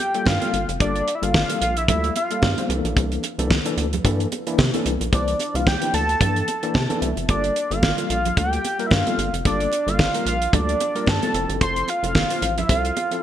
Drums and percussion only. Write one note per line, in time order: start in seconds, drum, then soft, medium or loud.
0.00 muted conga medium
0.14 closed hi-hat soft
0.26 kick loud
0.26 snare loud
0.26 high conga medium
0.42 closed hi-hat medium
0.42 high conga medium
0.54 closed hi-hat medium
0.69 closed hi-hat medium
0.80 kick loud
0.80 closed hi-hat medium
0.80 muted conga soft
0.96 closed hi-hat soft
1.08 closed hi-hat medium
1.23 closed hi-hat medium
1.34 kick loud
1.34 snare loud
1.34 high conga medium
1.50 closed hi-hat medium
1.62 closed hi-hat medium
1.77 closed hi-hat medium
1.88 kick loud
1.88 closed hi-hat loud
1.88 low conga medium
2.04 closed hi-hat soft
2.16 closed hi-hat medium
2.16 muted conga medium
2.31 closed hi-hat soft
2.42 kick loud
2.42 snare loud
2.42 high conga medium
2.58 closed hi-hat medium
2.58 high conga medium
2.70 closed hi-hat medium
2.85 closed hi-hat medium
2.97 kick loud
2.97 closed hi-hat medium
2.97 muted conga soft
3.12 closed hi-hat soft
3.23 closed hi-hat medium
3.23 muted conga soft
3.39 closed hi-hat medium
3.50 kick loud
3.50 snare loud
3.50 high conga medium
3.66 closed hi-hat medium
3.78 closed hi-hat medium
3.93 closed hi-hat medium
3.93 low conga medium
4.05 kick loud
4.05 closed hi-hat loud
4.20 closed hi-hat soft
4.32 closed hi-hat medium
4.32 muted conga medium
4.47 closed hi-hat soft
4.58 kick loud
4.58 snare loud
4.58 high conga medium
4.74 closed hi-hat medium
4.74 high conga medium
4.86 closed hi-hat medium
5.01 closed hi-hat medium
5.13 kick loud
5.13 closed hi-hat medium
5.13 muted conga soft
5.28 closed hi-hat soft
5.39 closed hi-hat medium
5.39 muted conga soft
5.55 closed hi-hat medium
5.67 kick loud
5.67 snare loud
5.67 high conga medium
5.82 closed hi-hat medium
5.94 closed hi-hat medium
6.09 closed hi-hat soft
6.21 kick loud
6.21 closed hi-hat loud
6.21 low conga medium
6.36 closed hi-hat soft
6.48 closed hi-hat medium
6.48 muted conga medium
6.63 closed hi-hat soft
6.74 kick loud
6.74 snare loud
6.74 high conga medium
6.90 closed hi-hat medium
6.90 high conga medium
7.02 closed hi-hat medium
7.17 closed hi-hat soft
7.29 kick loud
7.29 closed hi-hat medium
7.29 muted conga medium
7.44 closed hi-hat soft
7.56 closed hi-hat medium
7.71 closed hi-hat medium
7.83 kick loud
7.83 snare loud
7.83 high conga medium
7.98 closed hi-hat medium
8.10 closed hi-hat medium
8.25 closed hi-hat medium
8.25 low conga medium
8.37 kick loud
8.37 closed hi-hat medium
8.53 closed hi-hat soft
8.64 closed hi-hat medium
8.64 muted conga medium
8.79 closed hi-hat soft
8.91 kick loud
8.91 snare loud
8.91 high conga medium
9.07 closed hi-hat medium
9.07 high conga medium
9.19 closed hi-hat medium
9.34 closed hi-hat medium
9.45 kick loud
9.45 closed hi-hat medium
9.45 muted conga medium
9.60 closed hi-hat soft
9.72 closed hi-hat medium
9.72 muted conga soft
9.88 closed hi-hat medium
9.99 kick loud
9.99 snare loud
9.99 high conga medium
10.14 closed hi-hat medium
10.27 closed hi-hat medium
10.42 closed hi-hat medium
10.53 kick loud
10.53 closed hi-hat loud
10.53 low conga medium
10.69 closed hi-hat soft
10.80 closed hi-hat medium
10.80 muted conga medium
10.96 closed hi-hat soft
11.07 kick loud
11.07 snare loud
11.07 high conga medium
11.22 closed hi-hat medium
11.22 high conga medium
11.34 closed hi-hat medium
11.50 closed hi-hat medium
11.61 kick loud
11.61 closed hi-hat medium
11.61 muted conga soft
11.76 closed hi-hat medium
11.88 closed hi-hat medium
11.88 muted conga soft
12.04 closed hi-hat medium
12.15 kick loud
12.15 snare loud
12.15 high conga medium
12.30 closed hi-hat medium
12.42 closed hi-hat medium
12.58 closed hi-hat soft
12.58 low conga medium
12.69 kick loud
12.69 closed hi-hat loud
12.85 closed hi-hat soft
12.97 closed hi-hat medium
12.97 muted conga medium
13.11 closed hi-hat soft